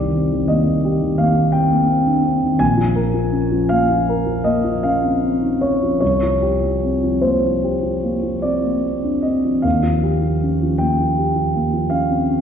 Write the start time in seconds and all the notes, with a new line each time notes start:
Already playing: C2 D#3 G4 D5
0.14 C4
0.32 D#3
0.48 A#3 D#5
0.67 D#3
0.84 G4
1.02 D#3
1.18 A#3 F5
1.38 D#3
1.52 C4 G5
1.70 A#3
1.89 C4
2.07 D4
2.23 C4
2.42 D#3
2.59 A#1 G#5
2.77 F3
2.95 A#4
3.14 F3
3.32 C#4
3.52 F3
3.69 A#3 F5
3.90 F3
4.09 A#4
4.26 F3
4.44 A#3 D#5
4.64 F3
4.83 C#4 F5
5.03 C4
5.23 C#4
5.42 D#4
5.61 C#4 C#5
5.83 F3
6.00 C2 C#5
6.22 F3
6.42 G4
6.63 F3
6.84 C4
7.03 F3
7.21 A#3 C5
7.44 F3
7.64 G4
7.83 F3
8.03 A#3
8.23 F3
8.42 C4 D5
8.63 A#3
8.84 C4
9.04 D4
9.22 C4 D#5
9.44 F3
9.62 D#2 F5
9.83 F3
10.03 G4
10.23 F3
10.43 C#4
10.63 F3
10.78 A#3 G5
11.00 F3
11.18 G4
11.36 F3
11.55 A#3
11.73 F3
11.90 C#4 F5
12.09 C4
12.28 C#4